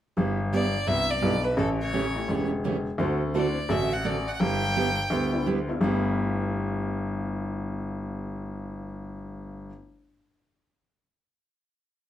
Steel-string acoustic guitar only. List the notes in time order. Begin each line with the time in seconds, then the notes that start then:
0.17 G3 B3 E4 G4
0.53 G3 B3 E4 G4
0.87 G3 B3 E4 G4
1.21 G3 B3 E4 G4
1.56 C#3 E3 A3 C#4 G4
1.93 C#3 E3 A3 C#4 G4
2.29 C#3 E3 A3 C#4 G4
2.64 C#3 E3 A3 C#4 G4
2.99 D3 A3 C4 F#4 A4
3.34 D3 A3 C4 F#4 A4
3.69 D3 A3 C4 F#4 A4
4.04 D3 A3 C4 F#4 A4
4.40 G3 B3 E4 G4
4.76 G3 B3 E4 G4
5.11 G3 B3 E4 G4
5.46 G3 B3 E4 G4
5.81 G3 B3 E4 G4